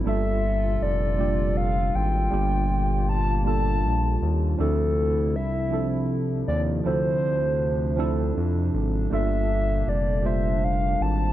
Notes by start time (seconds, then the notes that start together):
0.03 G1 A#2 G3 A#3 D4 F4 A4
0.07 A4 E5
0.82 F1 D5
1.18 G3 A#3 D4 F4 G4
1.57 F5
1.95 G#1 G5
2.31 G1 G3 A#3 D4 F4 G4
3.09 A5
3.44 G3 A#3 D4 F4 A4 A5
3.84 A#1
4.22 D#2
4.57 D2 C3 F3 C4 D4 E4 A4
5.35 C2 E5
5.70 F3 C4 D4 E4 A4
6.47 D#2 D5
6.84 D2 F3 C4 D4 E4 A4 C5
7.96 F3 C4 D4 E4 A4
8.37 F2
8.74 G#1
9.10 G1 A#2 G3 A#3 D4 F4 A4 E5
9.87 F1 D5
10.23 G3 A#3 D4 F4 C5 E5
10.64 F5
11.01 G#1 A5